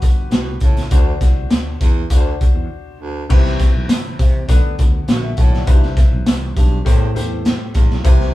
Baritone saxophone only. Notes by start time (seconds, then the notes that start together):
0.32 B2
0.62 A2
0.92 D2
1.82 E2
2.11 D2
3.01 D2
3.30 C3
5.08 B2
5.38 A2
5.68 G2
6.56 G2
6.85 E2
7.75 E2
8.04 C3